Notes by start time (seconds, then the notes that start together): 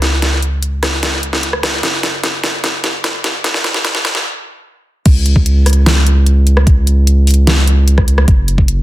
Already playing: C#2
0.02 snare, closed hi-hat
0.22 snare, closed hi-hat
0.42 closed hi-hat
0.63 closed hi-hat
0.83 cross-stick, snare, closed hi-hat
1.03 snare, closed hi-hat
1.23 closed hi-hat
1.33 snare
1.43 closed hi-hat
1.53 cross-stick
1.63 cross-stick, snare, closed hi-hat
1.83 F#1, snare, closed hi-hat
2.03 snare, closed hi-hat
2.23 snare, closed hi-hat
2.44 snare, closed hi-hat
2.64 snare, closed hi-hat
2.84 snare, closed hi-hat
3.04 snare, closed hi-hat
3.24 snare, closed hi-hat
3.44 snare, closed hi-hat
3.54 snare
3.64 snare, closed hi-hat
3.74 snare
3.85 snare, closed hi-hat
3.95 snare
4.05 snare, closed hi-hat
4.15 snare
5.06 C#2, kick, closed hi-hat, crash
5.26 closed hi-hat
5.36 kick
5.46 closed hi-hat
5.66 cross-stick, closed hi-hat, open hi-hat
5.73 closed hi-hat
5.86 snare, closed hi-hat
6.07 closed hi-hat
6.26 closed hi-hat
6.47 closed hi-hat
6.57 cross-stick
6.67 kick, closed hi-hat
6.87 closed hi-hat
7.07 closed hi-hat
7.27 closed hi-hat, open hi-hat
7.47 snare, closed hi-hat
7.67 closed hi-hat
7.88 closed hi-hat
7.98 kick, cross-stick
8.08 closed hi-hat
8.18 cross-stick
8.28 F#1, kick, closed hi-hat
8.48 closed hi-hat
8.58 kick
8.68 closed hi-hat